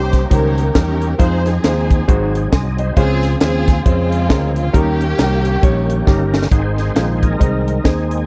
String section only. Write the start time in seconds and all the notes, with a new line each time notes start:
Already playing: G4 C5
0.31 C#4 G4 A#4
0.75 C#4 G4 A#4
1.20 D#4 G#4 C5
1.47 C4 D#4 G#4
2.98 C4 F4 G#4
3.42 C4 F4 G#4
3.86 G#3 C4 F4
4.57 F4
4.73 A#3 C#4 G4